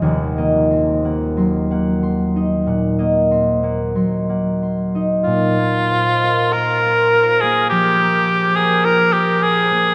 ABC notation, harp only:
X:1
M:4/4
L:1/16
Q:1/4=47
K:Ebmix
V:1 name="Harp"
[e_gc'] e c' g c' g c' e g e c' g c' g c' e | z16 |]
V:2 name="Harp"
[E,,,E,,E] B, C B, _G, B,2 E B,, B, C B, G, B,2 E | B,, B, c B F B c B, F, B, c B F B c B, |]